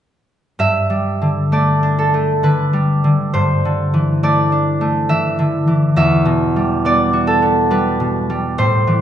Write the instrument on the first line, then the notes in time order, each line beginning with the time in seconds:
harp
0.59 G2 E5
0.90 G3
1.22 D3
1.52 A3 D5
1.83 D4
1.99 A4
2.14 A3
2.43 D3 B4
2.73 G3
3.04 D3
3.34 G2 C5
3.65 D3
3.94 E3
4.23 A3 D5
4.52 D4
4.81 A3
5.09 E3 E5
5.39 D3
5.67 E3
5.96 E2 E5
6.25 B2
6.56 G3
6.85 B3 D5
7.13 F#4
7.27 A4
7.42 B3
7.70 G3 B4
8.00 B2
8.30 G3
8.58 A2 C5
8.87 E3